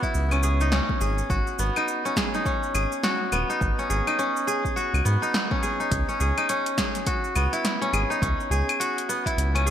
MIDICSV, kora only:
0, 0, Header, 1, 2, 480
1, 0, Start_track
1, 0, Key_signature, 4, "minor"
1, 0, Tempo, 576923
1, 1082, Time_signature, 4, 2, 24, 8
1, 8073, End_track
2, 0, Start_track
2, 0, Title_t, "Kora"
2, 0, Program_c, 0, 46
2, 0, Note_on_c, 0, 59, 76
2, 0, Note_on_c, 0, 61, 80
2, 0, Note_on_c, 0, 66, 78
2, 0, Note_on_c, 0, 68, 74
2, 23, Note_on_c, 0, 64, 79
2, 261, Note_off_c, 0, 61, 0
2, 264, Note_on_c, 0, 61, 72
2, 358, Note_off_c, 0, 68, 0
2, 361, Note_on_c, 0, 68, 76
2, 506, Note_on_c, 0, 63, 74
2, 556, Note_off_c, 0, 64, 0
2, 598, Note_off_c, 0, 61, 0
2, 602, Note_on_c, 0, 61, 78
2, 837, Note_off_c, 0, 68, 0
2, 840, Note_on_c, 0, 68, 72
2, 854, Note_off_c, 0, 66, 0
2, 1081, Note_on_c, 0, 66, 81
2, 1321, Note_off_c, 0, 59, 0
2, 1324, Note_on_c, 0, 59, 76
2, 1466, Note_off_c, 0, 63, 0
2, 1469, Note_on_c, 0, 63, 75
2, 1704, Note_off_c, 0, 61, 0
2, 1707, Note_on_c, 0, 61, 75
2, 1804, Note_off_c, 0, 68, 0
2, 1807, Note_on_c, 0, 68, 73
2, 1947, Note_off_c, 0, 63, 0
2, 1950, Note_on_c, 0, 63, 79
2, 2043, Note_off_c, 0, 61, 0
2, 2046, Note_on_c, 0, 61, 83
2, 2283, Note_off_c, 0, 68, 0
2, 2287, Note_on_c, 0, 68, 77
2, 2297, Note_off_c, 0, 66, 0
2, 2527, Note_on_c, 0, 66, 82
2, 2762, Note_off_c, 0, 59, 0
2, 2765, Note_on_c, 0, 59, 76
2, 2905, Note_off_c, 0, 63, 0
2, 2909, Note_on_c, 0, 63, 69
2, 3148, Note_off_c, 0, 61, 0
2, 3152, Note_on_c, 0, 61, 72
2, 3239, Note_off_c, 0, 68, 0
2, 3243, Note_on_c, 0, 68, 74
2, 3384, Note_off_c, 0, 63, 0
2, 3387, Note_on_c, 0, 63, 75
2, 3480, Note_off_c, 0, 61, 0
2, 3483, Note_on_c, 0, 61, 83
2, 3718, Note_off_c, 0, 68, 0
2, 3721, Note_on_c, 0, 68, 74
2, 3744, Note_off_c, 0, 66, 0
2, 3961, Note_on_c, 0, 66, 88
2, 4198, Note_off_c, 0, 59, 0
2, 4201, Note_on_c, 0, 59, 71
2, 4340, Note_off_c, 0, 63, 0
2, 4344, Note_on_c, 0, 63, 73
2, 4581, Note_off_c, 0, 61, 0
2, 4585, Note_on_c, 0, 61, 82
2, 4678, Note_off_c, 0, 68, 0
2, 4681, Note_on_c, 0, 68, 74
2, 4822, Note_off_c, 0, 63, 0
2, 4825, Note_on_c, 0, 63, 70
2, 5060, Note_off_c, 0, 61, 0
2, 5063, Note_on_c, 0, 61, 72
2, 5158, Note_off_c, 0, 68, 0
2, 5161, Note_on_c, 0, 68, 72
2, 5178, Note_off_c, 0, 66, 0
2, 5302, Note_off_c, 0, 63, 0
2, 5306, Note_on_c, 0, 63, 70
2, 5399, Note_off_c, 0, 61, 0
2, 5402, Note_on_c, 0, 61, 79
2, 5637, Note_off_c, 0, 68, 0
2, 5640, Note_on_c, 0, 68, 70
2, 5752, Note_off_c, 0, 59, 0
2, 5881, Note_on_c, 0, 66, 85
2, 6120, Note_on_c, 0, 59, 72
2, 6264, Note_on_c, 0, 64, 77
2, 6314, Note_off_c, 0, 63, 0
2, 6499, Note_off_c, 0, 61, 0
2, 6502, Note_on_c, 0, 61, 77
2, 6597, Note_off_c, 0, 68, 0
2, 6600, Note_on_c, 0, 68, 74
2, 6740, Note_on_c, 0, 63, 77
2, 6790, Note_off_c, 0, 64, 0
2, 6835, Note_off_c, 0, 61, 0
2, 6838, Note_on_c, 0, 61, 79
2, 7078, Note_off_c, 0, 68, 0
2, 7081, Note_on_c, 0, 68, 76
2, 7097, Note_off_c, 0, 66, 0
2, 7320, Note_on_c, 0, 66, 79
2, 7560, Note_off_c, 0, 59, 0
2, 7563, Note_on_c, 0, 59, 71
2, 7705, Note_on_c, 0, 64, 83
2, 7755, Note_off_c, 0, 63, 0
2, 7941, Note_off_c, 0, 61, 0
2, 7944, Note_on_c, 0, 61, 73
2, 8036, Note_off_c, 0, 68, 0
2, 8040, Note_on_c, 0, 68, 80
2, 8073, Note_off_c, 0, 59, 0
2, 8073, Note_off_c, 0, 61, 0
2, 8073, Note_off_c, 0, 64, 0
2, 8073, Note_off_c, 0, 66, 0
2, 8073, Note_off_c, 0, 68, 0
2, 8073, End_track
0, 0, End_of_file